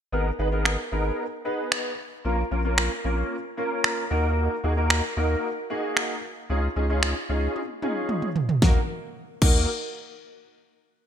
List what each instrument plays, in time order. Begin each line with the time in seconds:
0.12 sub bass G#1, grand piano B3 D#4 G#4 A#4
0.39 sub bass G#1, grand piano B3 D#4 G#4 B4
0.52 grand piano B3 D#4 G#4 A#4
0.65 finger snap
0.92 sub bass G#1, grand piano B3 D#4 G#4 A#4
1.45 grand piano B3 D#4 G#4 B4
1.72 finger snap
2.24 sub bass A#1, grand piano A#3 C#4 F4 A#4
2.51 sub bass A#1, grand piano A#3 C#4 F4 A#4
2.65 grand piano A#3 C#4 F4 A#4
2.78 finger snap
3.04 sub bass A#1, grand piano A#3 C#4 F4 A#4
3.57 grand piano A#3 C#4 F4 A#4
3.84 finger snap
4.10 sub bass D#2, grand piano A#3 D#4 F#4 A#4
4.64 sub bass D#2, grand piano A#3 D#4 F#4 G#4
4.77 grand piano A#3 D#4 F#4 A#4
4.90 finger snap
5.17 sub bass D#2, grand piano A#3 D#4 F#4 A#4
5.70 grand piano A#3 D#4 F#4 G#4
5.97 finger snap
6.50 sub bass C#2, grand piano C#4 D#4 F4 G#4
6.76 sub bass C#2, grand piano C#4 D#4 F4 G#4
6.89 grand piano C#4 D#4 F4 G#4
7.03 finger snap
7.29 sub bass C#2, grand piano C#4 D#4 F4 G#4
7.56 high tom
7.82 grand piano C#4 D#4 F4 G#4, mid tom
8.09 mid tom
8.22 mid tom
8.36 floor tom
8.49 floor tom
8.62 sub bass D#2, grand piano A#3 D#4 F#4 A#4, kick, snare
9.42 sub bass D#2, grand piano A#3 D#4 F#4 A#4, kick, crash